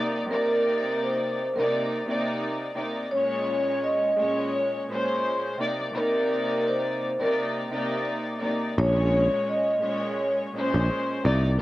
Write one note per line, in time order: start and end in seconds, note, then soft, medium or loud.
0.00 0.16 C3 medium
0.00 0.17 A#3 medium
0.00 0.17 D#4 medium
0.00 0.18 D5 loud
0.29 1.44 C3 loud
0.29 1.45 A#3 loud
0.29 1.45 D#4 medium
0.29 0.97 A#4 loud
0.29 1.46 D5 loud
1.55 2.03 C3 loud
1.55 2.03 A#3 medium
1.55 2.04 D#4 medium
1.55 1.88 A#4 medium
1.55 2.04 D5 loud
2.06 2.72 C3 loud
2.06 2.73 A#3 medium
2.06 2.73 D#4 medium
2.06 2.73 D5 loud
2.75 3.09 C3 medium
2.75 3.09 A#3 medium
2.75 3.10 D#4 medium
2.75 3.10 D5 medium
3.11 4.11 A#2 loud
3.11 4.11 G#3 loud
3.11 4.12 C#4 medium
3.11 3.79 C#5 medium
3.11 4.12 C#5 loud
3.84 4.35 D#5 medium
4.16 4.83 A#2 medium
4.16 4.83 G#3 loud
4.16 4.84 C#4 medium
4.16 4.84 C#5 loud
4.38 4.70 C#5 medium
4.89 5.60 A#2 medium
4.89 5.60 G#3 medium
4.89 5.61 C#4 medium
4.89 5.61 C5 loud
5.58 5.81 C3 medium
5.58 5.81 A#3 medium
5.58 5.82 D#4 medium
5.58 5.82 D5 loud
5.93 7.09 C3 loud
5.93 7.09 A#3 loud
5.93 7.10 D#4 medium
5.93 6.62 A#4 loud
5.93 7.10 D5 loud
6.68 7.19 C5 medium
7.20 7.67 C3 loud
7.20 7.68 A#3 medium
7.20 7.68 D#4 medium
7.20 7.53 A#4 medium
7.20 7.69 D5 loud
7.71 8.37 C3 loud
7.71 8.38 A#3 medium
7.71 8.38 D#4 loud
7.71 8.38 D5 loud
8.40 8.74 C3 medium
8.40 8.74 A#3 medium
8.40 8.75 D#4 medium
8.40 8.75 D5 medium
8.77 9.27 A#1 loud
8.77 9.76 A#2 loud
8.77 9.76 G#3 loud
8.77 9.77 C#4 medium
8.77 9.45 C#5 loud
8.77 9.77 C#5 loud
9.49 10.01 D#5 medium
9.81 10.48 A#2 loud
9.81 10.48 G#3 loud
9.81 10.49 C#4 medium
9.81 10.49 C#5 loud
10.03 10.35 C#5 medium
10.54 11.25 A#2 medium
10.54 11.25 G#3 medium
10.54 11.25 C#4 loud
10.54 11.26 C5 loud
10.74 10.88 A#1 medium
11.23 11.56 C2 loud
11.23 11.46 C3 medium
11.23 11.46 A#3 medium
11.23 11.47 D#4 medium
11.23 11.47 D5 loud
11.58 11.62 C3 loud